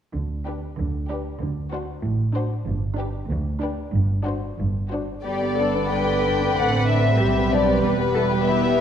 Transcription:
0.13 D2 D3
0.46 D4 G4 B4
0.78 D2 D3
1.10 D4 G4 B4
1.41 D2 D3
1.72 D4 F#4 C5
2.03 A1 A2
2.33 D4 F#4 C5
2.66 G1 G2
2.97 D4 G4 B4
3.28 D2
3.61 D4 G4 B4
3.92 G1 G2
4.24 D4 F#4 C5
4.58 G1 G2
4.90 D4 F#4 C5
5.23 G1 D3 G3 B3 G4 D5
5.41 B3
5.58 D4 A4
5.74 B3
5.91 G3 B4 G5
6.08 B3
6.25 D4
6.41 B3
6.56 A1 A3 C4 F#5
6.72 C4
6.88 D4 E5
7.03 C4
7.19 B1 G3 G4 B4
7.36 B3
7.51 D4 D5
7.66 B3
7.81 E1 G3 B3 G4 B4
7.97 B3
8.14 E4 A4
8.30 G4
8.46 E4 G4 E5
8.63 B3

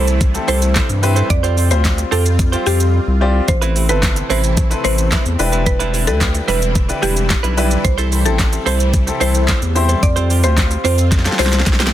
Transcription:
Already playing: C2 C3 E3 G3 A3 C4 E4
0.07 muted clean electric guitar stroke, closed hi-hat, shaker
0.21 kick, closed hi-hat, shaker
0.34 C4 E4 G4 A4, muted clean electric guitar stroke, closed hi-hat, shaker
0.48 C2 C4 E4 A4 C5, open hi-hat, shaker
0.62 muted clean electric guitar stroke, closed hi-hat, shaker
0.75 C4 E4 A4 C5, kick, snare, clap, closed hi-hat, shaker
0.89 G2, muted clean electric guitar stroke, closed hi-hat, shaker
1.02 C4 E4 G4 B4, muted clean electric guitar stroke, open hi-hat, shaker
1.16 C4 E4 A4 C5, closed hi-hat, shaker
1.30 F2 C4 F4 D5, muted clean electric guitar stroke, kick, closed hi-hat, shaker
1.43 C4 F4 G4 C5, closed hi-hat, shaker
1.57 C4 F4 G4 C5, open hi-hat, shaker
1.71 D2 C4 F4 G4 C5, muted clean electric guitar stroke, closed hi-hat, shaker
1.84 muted clean electric guitar stroke, kick, snare, clap, closed hi-hat, shaker
1.98 muted clean electric guitar stroke, closed hi-hat, shaker
2.11 F2 C4 F4 G4 A4 C5, open hi-hat, shaker
2.25 muted clean electric guitar stroke, closed hi-hat, shaker
2.39 muted clean electric guitar stroke, kick, closed hi-hat, shaker
2.52 C4 F4 G4 C5, closed hi-hat, shaker
2.66 F2 C4 F4 G4 C5, open hi-hat, shaker
2.80 muted clean electric guitar stroke, closed hi-hat, shaker
3.07 C2
3.21 C4 F4 G4 D5
3.48 A1 C3 E3 A3 C4 E4 C5, muted clean electric guitar stroke, kick, closed hi-hat, shaker
3.62 A3 C4 E4 B4, closed hi-hat, shaker
3.75 A3 C4 E4 B4, open hi-hat, shaker
3.89 G1 C4 E4 A4 B4, closed hi-hat, shaker
4.03 muted clean electric guitar stroke, kick, snare, clap, closed hi-hat, shaker
4.16 muted clean electric guitar stroke, closed hi-hat, shaker
4.30 A1 A3 C4 E4 B4 C5, open hi-hat, shaker
4.43 muted clean electric guitar stroke, closed hi-hat, shaker
4.57 kick, closed hi-hat, shaker
4.71 C4 E4 A4 B4, muted clean electric guitar stroke, closed hi-hat, shaker
4.84 A1 A3 C4 E4 B4 C5, open hi-hat, shaker
4.98 muted clean electric guitar stroke, closed hi-hat, shaker
5.11 A3 C4 E4 B4, kick, snare, clap, closed hi-hat, shaker
5.25 E2, muted clean electric guitar stroke, closed hi-hat, shaker
5.39 E1 D3 E3 G3 D4 E4 G4 B4, muted clean electric guitar stroke, open hi-hat, shaker
5.52 G3 D4 E4 B4, closed hi-hat, shaker
5.66 B4, kick, closed hi-hat, shaker
5.79 G3 D4 E4 B4, closed hi-hat, shaker
5.93 G3 D4 E4 B4, open hi-hat, shaker
6.07 D2 D4 E4 G4 A4 B4, muted clean electric guitar stroke, shaker
6.21 muted clean electric guitar stroke, kick, snare, clap, closed hi-hat, shaker
6.34 muted clean electric guitar stroke, closed hi-hat, shaker
6.48 E1 G3 D4 E4 B4, open hi-hat, shaker
6.61 muted clean electric guitar stroke, closed hi-hat, shaker
6.75 kick, closed hi-hat, shaker
6.89 D4 E4 G4 B4, muted clean electric guitar stroke, closed hi-hat, shaker
7.02 E1 G3 D4 E4 G4 B4, open hi-hat, shaker
7.16 muted clean electric guitar stroke, closed hi-hat, shaker
7.30 muted clean electric guitar stroke, kick, snare, clap, closed hi-hat, shaker
7.43 B1 G3 D4 E4 B4, closed hi-hat, shaker
7.57 G3 D4 E4 G4 B4, open hi-hat, shaker
7.71 muted clean electric guitar stroke, closed hi-hat, shaker
7.84 C2 C3 A3 C5, muted clean electric guitar stroke, kick, closed hi-hat, shaker
7.98 C4 E4 A4 C5, closed hi-hat, shaker
8.11 C4 E4 A4 C5, open hi-hat, shaker
8.25 A1 C4 E4 G4 A4, muted clean electric guitar stroke, closed hi-hat, shaker
8.39 muted clean electric guitar stroke, kick, snare, clap, closed hi-hat, shaker
8.52 muted clean electric guitar stroke, closed hi-hat, shaker
8.66 C2 C4 E4 A4 C5, open hi-hat, shaker
8.80 muted clean electric guitar stroke, closed hi-hat, shaker
8.94 kick, closed hi-hat, shaker
9.07 C4 E4 G4 A4, muted clean electric guitar stroke, closed hi-hat, shaker
9.20 C2 C4 E4 A4 C5, open hi-hat, shaker
9.34 muted clean electric guitar stroke, closed hi-hat, shaker
9.48 C4 E4 A4 C5, kick, snare, clap, closed hi-hat, shaker
9.62 E2, muted clean electric guitar stroke, closed hi-hat, shaker
9.75 C4 E4 G4 C5, muted clean electric guitar stroke, open hi-hat, shaker
9.89 C4 E4 A4 C5, closed hi-hat, shaker
10.02 F2 C4 F4 D5, muted clean electric guitar stroke, kick, closed hi-hat, shaker
10.16 C4 F4 G4 C5, closed hi-hat, shaker
10.29 C4 F4 G4 C5, open hi-hat, shaker
10.43 D2 C4 F4 G4 C5, muted clean electric guitar stroke, closed hi-hat, shaker
10.57 muted clean electric guitar stroke, kick, snare, clap, closed hi-hat, shaker
10.71 muted clean electric guitar stroke, closed hi-hat, shaker
10.84 F2 C4 F4 G4 C5, open hi-hat, shaker
10.98 muted clean electric guitar stroke, closed hi-hat, shaker
11.12 kick, snare, closed hi-hat, shaker
11.19 snare
11.25 C4 F4 G4 A4, muted clean electric guitar stroke, snare, closed hi-hat, shaker
11.32 snare
11.39 C2 C4 F4 G4 C5, snare, open hi-hat, shaker
11.46 snare
11.52 muted clean electric guitar stroke, snare, closed hi-hat, shaker
11.60 snare
11.66 B1, muted clean electric guitar stroke, kick, snare, closed hi-hat, shaker
11.73 snare
11.80 C4 F4 G4 C5, snare, closed hi-hat, shaker
11.87 snare

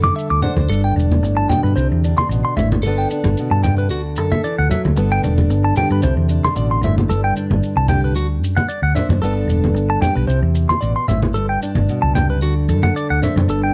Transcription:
Already playing: F#2 D3 G3 D4 A4
0.04 D6, high conga, maracas
0.16 E5, maracas
0.30 D2 D6
0.42 D4 C5 F#5, low conga
0.56 D2, high conga, maracas
0.70 G1 G2 A4, maracas
0.84 G5
0.96 E1 D4, maracas
1.12 high conga, maracas
1.23 G1 A2, maracas
1.37 A5
1.49 B2 G5, high conga, low conga, maracas
1.63 G2 B4, maracas
1.76 C2 C3 C5, maracas
1.92 E2
2.04 D4, maracas
2.18 C6, high conga, maracas
2.29 A1 B2, maracas
2.45 C6
2.57 G#1 A2 E5, low conga, maracas
2.72 high conga, maracas
2.83 G1 D3 B3 A4, muted steel-string acoustic guitar stroke, maracas
2.87 D4 A4
2.98 G5
3.10 D4, maracas
3.24 G1, high conga, maracas
3.37 B2, maracas
3.51 G2 A5
3.63 C3 G5, high conga, low conga, maracas
3.78 B4, maracas
3.90 D2 D3 F#4, maracas
4.16 F#2 A4, maracas
4.31 E5, high conga, maracas
4.44 E3 D5, maracas
4.58 D2 F#5
4.70 F#3 E5, low conga, maracas
4.85 D2, high conga, maracas
4.96 G1 G2 D3 B3 A4, muted clean electric guitar stroke, muted steel-string acoustic guitar stroke, maracas
5.12 G5
5.23 E1 D4, low conga, maracas
5.37 high conga, maracas
5.50 G1, maracas
5.64 A5
5.76 D3 G4 G5, low conga, maracas
5.90 G2 B4, maracas
6.02 C2 C3 C5, low conga, maracas
6.17 E2
6.29 D4, maracas
6.44 C6, high conga, maracas
6.55 A1 B2 D5, maracas
6.71 C6
6.81 G1 A2 E5, low conga, maracas
6.98 high conga, maracas
7.09 G1 G2 A4, maracas
7.24 G5
7.36 D4, maracas
7.50 G1, high conga, maracas
7.63 maracas
7.76 C2 A5
7.88 D3 G4 G5, high conga, low conga, maracas
8.04 B4, maracas
8.15 D2 F#4, muted steel-string acoustic guitar stroke, maracas
8.42 F#2, maracas
8.57 F#5, high conga, maracas
8.69 D5, maracas
8.82 D2 F#5
8.95 D4 C5 E5, low conga, maracas
9.09 F#2, high conga, maracas
9.21 G1 G2 D3 B3 D4 A4, maracas
9.47 E1 D4, maracas
9.64 high conga, maracas
9.74 G1, maracas
9.90 A5
10.02 G4 G5, high conga, low conga, maracas
10.16 B1 B4, maracas
10.27 C2 C3 C5, maracas
10.42 E2
10.55 muted steel-string acoustic guitar stroke, maracas
10.69 C6, high conga, maracas
10.81 A1 B2 D5, maracas
10.96 C6
11.08 G#1 A2 E5, low conga, maracas
11.22 high conga
11.34 G1 G2 A4, maracas
11.49 G5
11.62 D4, maracas
11.75 G1, high conga
11.89 B2, maracas
12.02 C#2 A5
12.15 C3 G5, high conga, low conga, maracas
12.29 B4, maracas
12.42 D2 D3 F#4, maracas
12.69 F#2 A4, maracas
12.83 F#5, high conga, maracas
12.96 D5, maracas
13.10 D2 F#5
13.22 D4 C5 E5, low conga, maracas
13.36 F#2, high conga, maracas
13.48 G1 G2 A4, maracas
13.63 G5

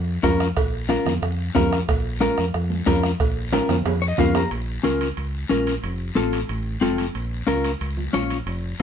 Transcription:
Already playing: F2
0.23 F2 C#4 F4 A#4, bombo low, bombo rim, cowbell, high conga, low timbale, short guiro
0.40 bombo rim, short guiro
0.57 A#1, bombo low, bombo rim, cowbell, long guiro
0.89 C#4 F4 A#4, bombo rim, cowbell, high conga, short guiro
1.06 F2, bombo rim, low conga, short guiro
1.22 F2, bombo rim, cowbell, long guiro
1.55 F2 C#4 F4 A#4, bombo low, bombo rim, cowbell, high conga, low conga, low timbale, short guiro
1.72 bombo rim, short guiro
1.89 A#1, bombo low, bombo rim, cowbell, long guiro
2.20 C#4 F4 A#4, bombo rim, cowbell, high conga, short guiro
2.38 F2, bombo rim, short guiro
2.54 F2, bombo rim, cowbell, long guiro
2.70 high conga
2.86 F2 C#4 F4 A#4, bombo low, bombo rim, cowbell, high conga, low timbale, short guiro
3.03 bombo rim, short guiro
3.20 A#1, bombo low, bombo rim, cowbell, long guiro
3.52 C#4 F4 A#4, bombo rim, cowbell, high conga, high timbale, short guiro
3.69 F2, bombo rim, low conga, high timbale, short guiro
3.86 F2, bombo rim, cowbell, low timbale, long guiro
4.02 C#5
4.08 D#5
4.18 F2 C#4 F4 A#4 F5, bombo low, bombo rim, cowbell, high conga, low conga, low timbale, short guiro
4.35 A#5, bombo rim, low timbale, short guiro
4.51 A#1, high timbale, long guiro
4.83 C#2 C#4 F4 A#4, high conga, high timbale, short guiro
5.01 high timbale, short guiro
5.17 C#2, high timbale, long guiro
5.49 A#1 C#4 F4 A#4, high conga, high timbale, short guiro
5.67 high timbale, short guiro
5.83 F1, high timbale, long guiro
6.15 A1 C4 F4 A4, high conga, high timbale, short guiro
6.33 high timbale, short guiro
6.49 A1, high timbale, long guiro
6.81 F1 C4 F4 A4, high conga, high timbale, short guiro
6.98 high timbale, short guiro
7.15 A#1, high timbale, long guiro
7.47 C#2 C#4 F4 A#4, high conga, high timbale, short guiro
7.64 high timbale, short guiro
7.81 C#2, high timbale, long guiro
7.97 high conga
8.13 A#1 C#4 F4 C#5, high conga, high timbale, short guiro
8.30 high timbale, short guiro
8.46 F1, high timbale, long guiro

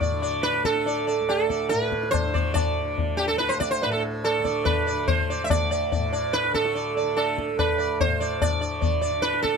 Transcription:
Already playing: D2 A2 D3
0.01 D5, tabla tin, tabla ge
0.11 D3
0.22 D5, tabla na
0.43 B4, tabla te
0.54 tabla te
0.65 D3 A4, tabla ke
0.76 tabla te
0.86 D5, tabla tin
1.07 D5, tabla na
1.20 D2
1.29 A4, tabla na
1.50 D5, tabla ke
1.69 A2 B4, tabla te
1.82 tabla te
1.92 tabla ke
2.03 tabla te
2.11 C5, tabla na, tabla ge
2.26 D3
2.34 D5, tabla ge
2.54 D5, tabla na, tabla ge
2.79 D3
2.98 tabla tin, tabla ge
3.17 G4, tabla na
3.28 A4
3.32 D2
3.38 B4, tabla te
3.49 C5, tabla te
3.60 D5, tabla ke
3.71 C5, tabla te
3.82 A2 B4, tabla tin
3.92 A4
4.24 A4, tabla na
4.39 D3
4.44 D5, tabla ke
4.65 B4, tabla na, tabla ge
4.87 D5
4.92 D3
5.08 C5, tabla tin, tabla ge
5.30 D5
5.44 D2 E5
5.50 D5, tabla na, tabla ge
5.71 D5
5.92 D5, tabla tin, tabla ge
5.97 A2
6.13 D5, tabla na
6.33 B4, tabla te
6.44 tabla te
6.50 D3
6.54 A4, tabla ke
6.65 tabla te
6.75 D5, tabla tin
6.97 D5
7.03 D3
7.17 A4, tabla na
7.38 tabla ke
7.55 D2
7.59 B4, tabla na, tabla ge
7.78 D5
8.00 C5, tabla tin, tabla ge
8.06 A2
8.20 D5
8.42 D5, tabla na, tabla ge
8.59 D3 D5
8.81 D5, tabla tin, tabla ge
9.02 D5
9.10 D3
9.22 B4, tabla te
9.34 tabla te
9.42 A4, tabla ke

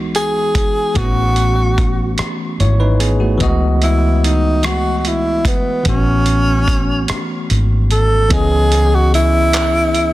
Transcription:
Already playing: C#2 E3 G#3 B3 D#4 F#4
0.15 G#4, closed hi-hat
0.55 G#1, kick, closed hi-hat
0.94 A1 E3 A3 B3 F#4, kick, closed hi-hat
0.98 C4 F#4
1.05 C#4
1.36 closed hi-hat
1.78 kick, closed hi-hat
2.18 muted fingered electric bass stroke, cross-stick, closed hi-hat
2.60 G#1 E4 C#5, closed hi-hat
2.80 D#4 B4
3.00 B3 G#4, closed hi-hat
3.20 A3 F#4
3.38 C#2 E3 G#3 B3 D#5, kick, closed hi-hat
3.43 F#4
3.82 E4, closed hi-hat
4.24 D#4, closed hi-hat
4.63 F#4, cross-stick, closed hi-hat
4.98 F#4
5.05 E4, closed hi-hat
5.45 G#1 B3, kick, closed hi-hat
5.83 A1 E3 A3 B3, kick, closed hi-hat
5.88 C#4 F#4
6.26 closed hi-hat
6.68 kick, closed hi-hat
7.08 muted fingered electric bass stroke, cross-stick, closed hi-hat
7.50 G#1, closed hi-hat
7.91 A4, closed hi-hat
8.29 C#2 E3 B3 C#4 D#5, kick, closed hi-hat
8.33 G#4
8.72 closed hi-hat
8.94 F#4
9.14 E4, closed hi-hat
9.53 clap, closed hi-hat
9.95 closed hi-hat

